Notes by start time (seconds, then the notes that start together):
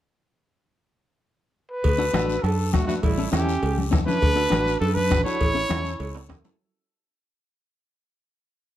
1.70 B4
1.84 D2, bombo low, cowbell, high conga, long guiro
1.98 D4 F#4 A4
2.13 A1 D4 F#4 A4, bombo rim, high conga, short guiro
2.30 short guiro
2.43 F#2 D4 A4, bombo rim, cowbell, high conga, long guiro
2.72 A1 A3 D4 F#4 A4, bombo low, bombo rim, high conga, short guiro
2.87 A3 D4 F#4 B4, high conga, short guiro
3.02 A1 G3 E4, bombo low, cowbell, high conga, long guiro
3.18 C#4 E4 A4
3.31 E2 C#4 E4 G4 A4, bombo rim, high conga, short guiro
3.49 short guiro
3.63 C#2, cowbell, high conga, long guiro
3.78 high conga
3.91 E2 C#4 E4 A4, bombo low, bombo rim, high conga, low conga, short guiro
4.06 C#4 D4 E4 B4, high conga, short guiro
4.22 D2, bombo low, cowbell, long guiro
4.36 D4 F#4 A4
4.50 A1 D4 F#4 B4, bombo rim, high conga, short guiro
4.68 short guiro
4.80 F#2 D4 A4, cowbell, long guiro
4.95 D4 B4, high conga
5.11 A1 D4 F#4 B4, bombo low, bombo rim, high conga, short guiro
5.24 D4 E4 F#4 A4 C#5, short guiro
5.41 A1, bombo low, cowbell, long guiro
5.54 C#4 E4 A4
5.69 E2 C#4 E4 A4, bombo rim, high conga, short guiro
5.85 short guiro
6.00 C#2, cowbell, high conga, long guiro
6.15 high timbale
6.29 E2 C#4 E4 G4, bombo low, bombo rim, high conga, low conga, high timbale, short guiro
6.44 C#4 E4 A4, high conga, low timbale, short guiro